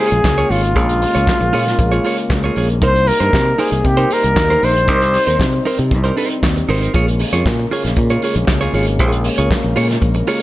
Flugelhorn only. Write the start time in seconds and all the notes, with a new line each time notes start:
0.00 G#4
0.51 F4
2.83 C5
3.07 A#4
3.59 G#4
3.86 G4
4.13 A#4
4.65 C5